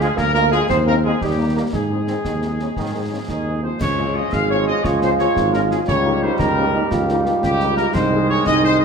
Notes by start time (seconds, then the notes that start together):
0.00 G#3 F4 G#4, snare
0.16 D2 A#3 A#4, concert bass drum, snare
0.33 G#3 A#3 F4 A#4, snare
0.51 F3 G#3 F4 G#4, snare
0.69 D#2 C4 C5, concert bass drum, snare
0.86 G#3 A#3 C4 D#4 A#4
1.03 D#3 G#3 C4 D#4 G#4
1.21 D#2 G3 G4, concert bass drum, snare
1.38 A#3 D#4
1.55 D#3 G3 A#3 D#4 G4
1.73 G#2 G#3 G#4, concert bass drum, snare
1.90 G#3 C4 D#4
2.07 D#3 G#3 C4 D#4, snare
2.25 D#2 D#3, concert bass drum, snare
2.41 C3 G#3 C4 D#4, snare
2.59 C#3 G#3 C4 D#4, snare
2.76 G#2 D#3, concert bass drum, snare
2.93 D#3 G#3 C4 D#4
3.10 C#3 G#3 C4 D#4
3.28 D#2 D#3 G#4, concert bass drum, snare
3.45 G#3 C4 D#4
3.63 F3 G#3 C4 D#4 C5
3.78 C#2 F3 G#3 C#5, concert bass drum, snare, crash
3.98 G#3 C#4 F4
4.15 G#3 C#4 F4 D#5
4.32 G#1 G#4 F5, concert bass drum, snare
4.49 G#3 C#4 F4 C#5
4.67 G#3 C#4 F4 D#5
4.84 C#2 F4 C#5, concert bass drum, snare
5.02 G#3 C#4 F4 C5, snare
5.19 G#3 C#4 F4 C#5, snare
5.36 G#1, concert bass drum, snare
5.53 G#3 C#4 F4 A#4, snare
5.70 G#3 C#4 F4 G#4, snare
5.87 C#2 D#3 G3 C#5, concert bass drum, snare
6.05 A#3 D#4 G4
6.22 A#3 D#4 G4 C5
6.39 C#2 D#4 A#4, concert bass drum, snare
6.57 A#3 C#4 D#4 G4
6.74 A#3 D#4 G4
6.91 C#2 F4, concert bass drum, snare
7.08 A#3 D#4 G4, snare
7.26 A#3 D#4 G4, snare
7.43 C#2 G4, concert bass drum, snare
7.60 A#3 D#4 G4, snare
7.77 A#3 D#4 G4 A#4, snare
7.93 C2 D#3 G#3 D#4 C5, concert bass drum, snare, crash
8.12 G#3 D#4 G#4
8.29 G#3 D#4 G#4 C#5
8.45 C2 D#4 D#5, concert bass drum, snare
8.63 G#3 D#4 G#4 C5
8.79 G#3 D#4 G#4 D#5